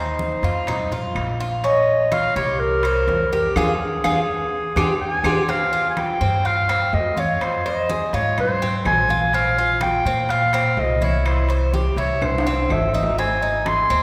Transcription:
Already playing: upright bass D#2, cuban tres D#4, clarinet C5
0.19 high conga
0.42 upright bass F2, cuban tres F4, high timbale
0.67 cuban tres D#4, high conga, low conga, high timbale, claves
0.92 cuban tres F4, high conga, low conga
1.15 upright bass A#1, high conga, high timbale, claves
1.40 cuban tres F4, high conga
1.64 cuban tres C#4, clarinet D#5, high conga, high timbale
1.88 high conga
2.12 cuban tres F4, clarinet F5, high conga, high timbale, claves
2.36 upright bass C2, cuban tres G4, clarinet C#5, high conga, high timbale
2.60 clarinet A#4, high conga
2.83 cuban tres C5, high conga, high timbale, claves
3.07 upright bass F2, high conga, high timbale, low timbale
3.32 cuban tres G4, clarinet A#4, high conga
3.56 upright bass F2, cuban tres F4 G4 G#4, clarinet G#4, high conga, high timbale, claves
4.04 upright bass F2, cuban tres F4 G4 G#4, high conga, high timbale, claves
4.76 upright bass F2, cuban tres F4 G4 G#4, high conga, high timbale, claves
5.01 clarinet G#5
5.24 upright bass F2, cuban tres F4 G4 G#4, high conga, high timbale, claves
5.48 cuban tres C4, clarinet F5, high conga, high timbale
5.73 cuban tres F4, high conga
5.90 clarinet G#5
5.97 clarinet G5, high conga, high timbale, low timbale, claves
6.21 upright bass G2, cuban tres C4, high conga
6.45 cuban tres F4, clarinet F5, high conga, high timbale
6.69 cuban tres C4, high conga, high timbale, claves
6.93 upright bass F2, clarinet D#5, high conga, low timbale
7.17 cuban tres F4, clarinet C#5, high conga
7.41 clarinet C5, high conga, high timbale, claves
7.65 cuban tres C5, clarinet D#5, high conga, high timbale
7.89 cuban tres G#4, high conga, low timbale
8.13 upright bass G#2, cuban tres F4, clarinet C#5, high conga, high timbale
8.38 clarinet C5, high conga, low conga, high timbale, claves
8.62 cuban tres C4, high conga, low conga
8.85 upright bass A#1, clarinet G#5, high conga, high timbale, low timbale, claves
9.09 cuban tres F4, high conga
9.33 cuban tres C4, clarinet F5, high conga, high timbale
9.58 cuban tres F4, high conga
9.81 clarinet G5, high conga, high timbale, low timbale, claves
10.05 upright bass A#2, cuban tres C4, high conga
10.29 cuban tres F4, clarinet F5, high conga, high timbale
10.53 cuban tres C4, high conga, high timbale, claves
10.77 upright bass C2, clarinet D#5, high conga, low timbale
11.01 cuban tres E4, clarinet C#5, high conga
11.25 clarinet C5, high conga, high timbale, claves
11.49 cuban tres C5, high conga, high timbale
11.73 cuban tres G4, high conga, low timbale
11.96 upright bass C2, cuban tres E4, clarinet C#5, high conga, high timbale
12.22 clarinet C5, high conga, low conga, high timbale, claves
12.38 high timbale
12.46 cuban tres C4, high conga
12.69 upright bass G#1, clarinet E5, high conga, low timbale, claves
12.94 cuban tres D#4, high conga
13.03 low timbale
13.18 cuban tres C4, clarinet G#5, high conga, high timbale
13.42 cuban tres D#4, high conga
13.66 clarinet C6, high conga, high timbale, low timbale, claves
13.90 upright bass D#2, cuban tres C4, high conga

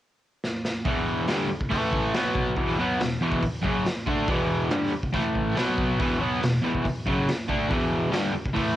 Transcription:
0.44 snare
0.65 snare
0.85 overdriven electric guitar E2 B2 E3, kick, open hi-hat
1.28 overdriven electric guitar G2 D3 G3, snare, open hi-hat
1.50 muted overdriven electric guitar stroke
1.61 kick
1.70 overdriven electric guitar A2 E3 A3, kick, open hi-hat
1.93 kick
2.14 overdriven electric guitar B2 F#3 B3, snare, open hi-hat
2.35 kick
2.56 overdriven electric guitar E2 B2 E3, kick, open hi-hat
2.79 overdriven electric guitar B2 F#3 B3
2.99 overdriven electric guitar E2 B2, snare, open hi-hat
3.21 overdriven electric guitar E2 B2 E3
3.32 kick
3.42 muted overdriven electric guitar stroke, kick, open hi-hat
3.62 overdriven electric guitar F#2 C#3 F#3, kick
3.85 snare, open hi-hat
4.07 overdriven electric guitar D3 A3 D4, kick
4.28 overdriven electric guitar E2 B2 E3, kick, open hi-hat
4.70 overdriven electric guitar G2 D3 G3, snare, open hi-hat
4.93 muted overdriven electric guitar stroke
5.03 kick
5.13 overdriven electric guitar A2 E3 A3, kick, open hi-hat
5.35 kick
5.56 overdriven electric guitar B2 F#3 B3, snare, open hi-hat
5.78 kick
6.00 overdriven electric guitar E2 B2 E3, kick, open hi-hat
6.20 overdriven electric guitar B2 F#3 B3
6.42 overdriven electric guitar E2 B2, snare, open hi-hat
6.62 overdriven electric guitar E2 B2 E3
6.74 kick
6.85 muted overdriven electric guitar stroke, kick, open hi-hat
7.06 overdriven electric guitar F#2 C#3 F#3, kick
7.28 snare, open hi-hat
7.48 overdriven electric guitar D3 A3 D4, kick
7.68 overdriven electric guitar E2 B2 E3, kick, open hi-hat
8.11 overdriven electric guitar G2 D3 G3, snare, open hi-hat
8.33 muted overdriven electric guitar stroke
8.46 kick
8.53 overdriven electric guitar A2 E3 A3, kick, open hi-hat

